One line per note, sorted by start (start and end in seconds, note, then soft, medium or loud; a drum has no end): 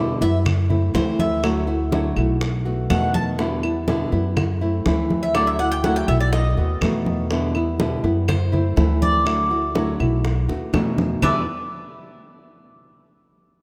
0.00 0.15 E2 medium
0.00 0.20 B2 medium
0.00 0.21 D3 medium
0.00 0.21 G3 medium
0.00 0.21 B3 medium
0.00 0.20 E4 medium
0.00 0.17 D5 medium
0.21 0.91 F#2 medium
0.21 0.45 G3 soft
0.21 0.45 B3 soft
0.21 0.45 E4 medium
0.21 0.36 E5 loud
0.21 high bongo soft
0.21 high conga soft
0.45 muted nylon-string guitar stroke medium
0.45 high bongo medium
0.45 high conga soft
0.45 low conga medium
0.45 claves medium
0.70 0.93 A3 soft
0.70 0.93 C4 soft
0.70 0.93 E4 medium
0.70 high conga soft
0.70 low conga medium
0.94 2.10 D2 medium
0.94 1.42 E3 medium
0.94 1.42 A3 medium
0.94 1.43 C4 medium
0.94 1.43 E4 medium
0.94 1.19 C5 medium
0.94 high bongo medium
0.94 low bongo medium
0.94 high conga medium
1.19 1.43 E5 medium
1.19 high bongo soft
1.19 high conga medium
1.43 1.67 D3 medium
1.43 1.67 F#3 medium
1.43 1.67 A3 medium
1.43 1.67 E4 medium
1.43 1.66 F#4 medium
1.43 high bongo medium
1.43 high conga soft
1.43 claves medium
1.67 1.92 A3 soft
1.67 1.91 E4 soft
1.67 1.91 F#4 medium
1.67 high bongo soft
1.67 high conga soft
1.92 2.16 D3 medium
1.92 2.16 F#3 medium
1.92 2.16 A3 medium
1.92 2.16 E4 medium
1.92 2.15 F#4 medium
1.92 high bongo medium
1.92 high conga medium
2.16 2.86 B1 medium
2.16 2.41 A3 soft
2.16 2.40 E4 medium
2.16 2.40 F#4 medium
2.16 high bongo soft
2.16 high conga soft
2.16 claves medium
2.41 muted nylon-string guitar stroke medium
2.41 high bongo medium
2.41 high conga soft
2.65 2.89 A3 soft
2.65 2.90 B3 soft
2.65 2.89 F#4 medium
2.65 high bongo soft
2.65 high conga soft
2.90 4.06 E2 medium
2.90 3.37 B2 medium
2.90 3.38 D#3 medium
2.90 3.38 A3 medium
2.90 3.38 B3 medium
2.90 3.39 F#4 medium
2.90 3.14 F#5 medium
2.90 high bongo medium
2.90 low bongo medium
2.90 high conga medium
2.90 claves medium
3.14 3.29 A5 loud
3.14 high conga medium
3.38 3.62 B2 medium
3.38 3.63 D3 medium
3.38 3.63 G3 medium
3.38 3.63 B3 medium
3.38 3.62 E4 medium
3.38 high bongo medium
3.38 high conga soft
3.63 3.88 G3 soft
3.63 3.87 B3 soft
3.63 3.87 E4 soft
3.63 high bongo soft
3.63 high conga soft
3.63 claves medium
3.88 4.12 B2 medium
3.88 4.12 D3 medium
3.88 4.12 G3 medium
3.88 4.12 B3 medium
3.88 4.11 E4 medium
3.88 high bongo medium
3.88 high conga medium
4.12 4.82 F#2 medium
4.12 4.37 G3 soft
4.12 4.36 B3 soft
4.12 4.36 E4 medium
4.12 high bongo soft
4.12 high conga soft
4.37 muted nylon-string guitar stroke medium
4.37 high bongo medium
4.37 high conga soft
4.37 low conga medium
4.37 claves medium
4.61 4.85 A3 soft
4.61 4.85 C4 soft
4.61 4.85 E4 soft
4.61 high conga soft
4.86 6.02 D2 medium
4.86 5.34 E3 medium
4.86 5.34 A3 medium
4.86 5.35 C4 medium
4.86 5.35 E4 medium
4.86 high bongo medium
4.86 low bongo medium
4.86 high conga medium
5.10 high bongo soft
5.10 high conga medium
5.23 5.35 E5 medium
5.34 5.58 D3 medium
5.34 5.59 F#3 medium
5.34 5.59 A3 medium
5.34 5.59 E4 medium
5.34 5.59 F#4 medium
5.34 5.47 D5 medium
5.34 high bongo medium
5.34 high conga soft
5.34 claves medium
5.47 5.59 E5 medium
5.59 5.84 A3 soft
5.59 5.83 E4 soft
5.59 5.83 F#4 soft
5.59 5.71 F#5 medium
5.59 high bongo soft
5.59 high conga soft
5.71 5.83 G5 loud
5.84 6.08 D3 medium
5.84 6.08 F#3 medium
5.84 6.08 A3 medium
5.84 6.08 E4 medium
5.84 6.07 F#4 medium
5.84 5.96 F#5 medium
5.84 high bongo medium
5.84 high conga medium
5.96 6.08 G5 medium
6.08 6.54 B1 loud
6.08 6.32 A3 soft
6.08 6.32 E4 medium
6.08 6.32 F#4 medium
6.08 6.20 E5 medium
6.08 high bongo soft
6.08 high conga soft
6.08 claves medium
6.20 6.32 D5 medium
6.33 7.27 D#5 medium
6.33 muted nylon-string guitar stroke medium
6.33 high bongo medium
6.33 high conga soft
6.57 6.80 D#2 medium
6.57 6.82 A3 soft
6.57 6.81 B3 soft
6.57 6.81 F#4 soft
6.57 high bongo soft
6.57 high conga soft
6.81 7.97 E2 medium
6.81 7.29 B2 medium
6.81 7.30 D#3 medium
6.81 7.30 A3 medium
6.81 7.31 B3 medium
6.81 7.31 F#4 medium
6.81 high bongo medium
6.81 low bongo medium
6.81 high conga medium
6.81 claves medium
7.06 high conga medium
7.31 7.54 B2 medium
7.31 7.54 D3 medium
7.31 7.55 G3 medium
7.31 7.55 B3 medium
7.31 7.54 E4 medium
7.31 high bongo medium
7.31 high conga soft
7.55 7.79 G3 soft
7.55 7.79 B3 soft
7.55 7.79 E4 medium
7.55 high bongo soft
7.55 high conga soft
7.55 claves medium
7.80 8.03 B2 medium
7.80 8.03 D3 medium
7.80 8.03 G3 medium
7.80 8.03 B3 medium
7.80 8.03 E4 medium
7.80 high bongo medium
7.80 high conga medium
8.04 8.73 F#2 medium
8.04 8.28 G3 soft
8.04 8.28 B3 soft
8.04 8.27 E4 medium
8.04 high bongo soft
8.04 high conga soft
8.28 8.98 C5 medium
8.28 muted nylon-string guitar stroke medium
8.28 high bongo medium
8.28 high conga soft
8.28 low conga medium
8.28 claves medium
8.52 8.76 A3 soft
8.52 8.76 C4 soft
8.52 8.76 E4 medium
8.52 high conga soft
8.52 low conga medium
8.76 9.93 D2 medium
8.76 9.25 E3 medium
8.76 9.25 A3 medium
8.76 9.25 C4 medium
8.76 9.25 E4 medium
8.76 high bongo medium
8.76 low bongo medium
8.76 high conga medium
9.02 9.71 D5 loud
9.02 high bongo soft
9.02 high conga medium
9.25 9.49 D3 medium
9.25 9.50 F#3 medium
9.25 9.50 A3 medium
9.25 9.50 E4 medium
9.25 9.49 F#4 medium
9.25 high bongo medium
9.25 high conga soft
9.25 claves medium
9.50 9.75 A3 soft
9.50 9.75 E4 soft
9.50 9.74 F#4 medium
9.50 high bongo soft
9.50 high conga soft
9.75 9.99 D3 medium
9.75 9.99 F#3 medium
9.75 9.99 A3 medium
9.75 9.99 E4 medium
9.75 9.98 F#4 medium
9.75 high bongo medium
9.75 high conga medium
10.00 10.45 B1 medium
10.00 10.24 A3 soft
10.00 10.24 E4 soft
10.00 10.23 F#4 medium
10.00 high bongo soft
10.00 high conga soft
10.00 claves medium
10.24 muted nylon-string guitar stroke medium
10.24 high bongo medium
10.24 high conga soft
10.49 10.72 D#2 medium
10.49 10.73 A3 soft
10.49 10.73 B3 soft
10.49 10.72 F#4 soft
10.49 high bongo medium
10.49 high conga soft
10.73 11.17 E2 medium
10.73 11.21 B2 medium
10.73 11.22 D#3 medium
10.73 11.22 A3 medium
10.73 11.22 B3 medium
10.73 11.22 F#4 medium
10.73 low bongo medium
10.73 high conga medium
10.73 claves medium
10.98 low bongo medium
10.98 high conga medium
11.22 11.45 E2 medium
11.22 11.42 E2 medium
11.22 11.42 B2 medium
11.22 11.42 D3 medium
11.22 11.42 G3 medium
11.22 11.43 B3 medium
11.22 11.45 E4 medium
11.22 11.43 E4 medium
11.22 11.45 B4 medium
11.22 11.46 D5 loud
11.22 low bongo loud
11.22 low conga medium
11.22 claves loud